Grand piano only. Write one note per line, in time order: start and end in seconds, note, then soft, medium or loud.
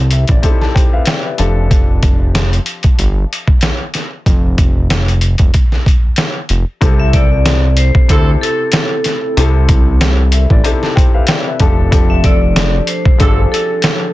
0.00 0.15 C3 medium
0.00 0.16 C4 medium
0.00 0.16 E4 medium
0.00 0.16 A4 medium
0.12 0.28 E5 medium
0.30 0.43 D5 medium
0.42 1.38 C3 medium
0.42 1.39 C4 medium
0.42 0.51 D#4 medium
0.42 0.76 A4 medium
0.42 0.60 E5 medium
0.50 1.42 E4 medium
0.62 0.74 A5 medium
0.75 0.92 G4 medium
0.75 0.92 C5 medium
0.75 0.91 G5 medium
0.93 1.07 B4 medium
0.93 1.06 E5 medium
0.93 1.06 F5 medium
1.07 1.24 D5 medium
1.07 1.24 G5 medium
1.25 1.56 B4 medium
1.25 1.55 E5 medium
1.38 1.65 F3 medium
1.38 1.65 D4 medium
1.38 1.66 G4 medium
1.38 1.66 A4 loud
1.38 1.69 A5 medium
6.81 7.81 C3 medium
6.81 7.81 C4 medium
6.81 7.82 E4 medium
6.81 7.82 A4 loud
8.08 9.08 C3 medium
8.08 9.09 C4 medium
8.08 9.09 E4 medium
8.08 9.10 A4 loud
9.37 10.37 C3 medium
9.37 10.37 C4 medium
9.37 10.37 E4 medium
9.37 10.38 A4 loud
10.33 10.50 E5 medium
10.52 10.64 D5 medium
10.64 11.60 C3 medium
10.64 11.60 C4 medium
10.64 10.72 D#4 medium
10.64 10.97 A4 loud
10.64 10.81 E5 medium
10.72 11.64 E4 medium
10.83 10.96 A5 medium
10.96 11.13 G4 medium
10.96 11.13 C5 medium
10.96 11.13 G5 medium
11.14 11.28 B4 medium
11.14 11.28 E5 medium
11.14 11.27 F5 medium
11.28 11.45 D5 medium
11.28 11.45 G5 medium
11.47 11.77 B4 medium
11.47 11.77 E5 medium
11.59 11.86 F3 medium
11.59 11.87 D4 medium
11.59 11.87 G4 medium
11.59 11.87 A4 loud
11.59 11.90 A5 medium
11.91 12.91 F3 medium
11.91 12.92 D4 medium
11.91 12.92 G4 medium
11.91 12.92 A4 loud
13.18 14.13 F3 medium
13.18 14.13 D4 medium
13.18 14.13 G4 medium
13.18 13.27 G#4 medium
13.27 14.13 A4 loud